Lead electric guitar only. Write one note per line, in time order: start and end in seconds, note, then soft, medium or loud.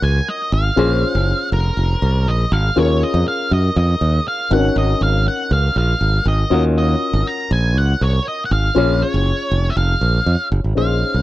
0.03 0.28 G#5 loud
0.28 0.53 D#5 medium
0.54 1.49 F5 loud
1.53 2.30 A#4 medium
2.28 2.53 D#5 medium
2.53 2.78 F5 loud
2.78 3.03 C#5 medium
3.03 3.26 D#5 medium
3.28 3.53 F5 loud
3.53 3.77 D#5 medium
3.78 4.28 D#5 medium
4.28 4.53 F5 medium
4.53 4.78 F#5 medium
4.78 5.03 D#5 loud
5.03 5.28 F5 medium
5.28 5.52 F#5 loud
5.53 5.77 F5 medium
5.78 6.28 F5 medium
6.28 6.62 D#5 medium
6.78 7.29 D#5 loud
7.27 7.52 A#5 loud
7.53 7.78 G#5 medium
7.78 8.03 F#5 loud
8.03 8.25 C#5 medium
8.28 8.45 D#5 medium
8.45 8.52 F#5 medium
8.52 9.03 F5 loud
9.02 9.72 C#5 medium
9.70 9.77 E5 medium
9.77 10.48 F5 medium
10.78 11.22 F5 medium